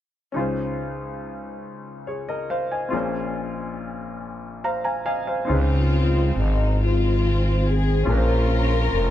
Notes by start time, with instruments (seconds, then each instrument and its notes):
0.32 grand piano C#2 C#3 C#4 D#4
0.36 grand piano F4 G#4 C5
2.07 grand piano G#4 C#5
2.29 grand piano A#4 D#5
2.50 grand piano C5 F5
2.72 grand piano D#5 G#5
2.88 grand piano A#1 A#2 C4 F4
2.93 grand piano C#4 G#4 A#4
2.97 grand piano C5
4.64 grand piano C5 F5 A#5
4.84 grand piano F5 G#5 A#5
5.06 grand piano D#5 F5 G#5
5.27 grand piano C5 F5
5.45 grand piano C4 D#4 F4
5.49 fm bass C#2, grand piano C#3 G#4, string section G#3 C4 F4
5.53 grand piano B4
5.60 grand piano C5
6.36 fm bass G#1, string section D#4
6.82 string section G#3 C4 F4
7.70 string section G#4
8.03 fm bass A#1, grand piano A#2 C#4 F4 G#4
8.09 string section C#4 F4 A#4, grand piano A#4 B4
8.18 grand piano C5
8.93 fm bass F1